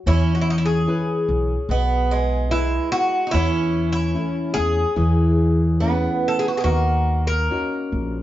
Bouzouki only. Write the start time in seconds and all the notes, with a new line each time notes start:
0.08 E4
0.35 F#4
0.41 E4
0.50 D#4
0.58 E4
0.66 G#4
2.51 E4
2.92 F#4
3.31 E4
3.92 E4
4.54 G#4
6.28 A4
6.39 G#4
6.48 F#4
6.57 G#4
6.64 F#4
7.27 A#4